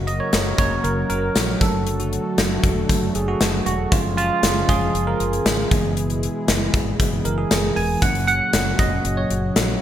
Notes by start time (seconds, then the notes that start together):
Already playing: F#1 C#3 F#3 A#3 F#4 A#4
0.07 D#5, closed hi-hat
0.20 C#5
0.33 F#1, snare, closed hi-hat
0.58 F1 F#3 A#3 C#4 C#5, kick, closed hi-hat
0.84 F#1 A#4, closed hi-hat
1.10 F#1 A#4, closed hi-hat
1.35 A#1, snare, closed hi-hat
1.60 F#1 D3 F#3 A3 D4 A4, kick, closed hi-hat
1.87 closed hi-hat
2.00 F#4, closed hi-hat
2.13 closed hi-hat
2.38 F#1, snare, closed hi-hat
2.64 E1, kick, closed hi-hat
2.89 F#1, kick, closed hi-hat
3.15 F#1 G#4, closed hi-hat
3.28 F#4
3.41 F#1, snare, closed hi-hat
3.66 E1 F#4, closed hi-hat
3.91 F#1 C#3 F3 G#3 C#4 F4 G#4, kick, closed hi-hat
4.17 F4, closed hi-hat
4.43 F#1, snare, closed hi-hat
4.69 F1 G#4, kick, closed hi-hat
4.94 F#1, closed hi-hat
5.07 A#4
5.20 F#1, closed hi-hat
5.33 closed hi-hat
5.46 G#1, snare, closed hi-hat
5.71 F#1 B2 E3 G#3 B3 E4, kick, closed hi-hat
5.97 closed hi-hat
6.10 closed hi-hat
6.23 closed hi-hat
6.48 F#1, snare, closed hi-hat
6.74 G#1, kick, closed hi-hat
6.99 F#1 E3 G#3 B3, kick, closed hi-hat
7.25 F#1 A#4, closed hi-hat
7.38 G#4
7.51 F#1, snare, closed hi-hat
7.76 E1 G#5, open hi-hat
8.01 F#1 A#2 C#3 F#3 A#3 C#4 F#4 F#5, kick, closed hi-hat
8.15 closed hi-hat
8.28 F#5, closed hi-hat
8.53 F#1, snare, closed hi-hat
8.79 F1 D#5, kick, closed hi-hat
9.05 F#1, closed hi-hat
9.17 C#5
9.30 F#1, closed hi-hat
9.56 A#1, snare, closed hi-hat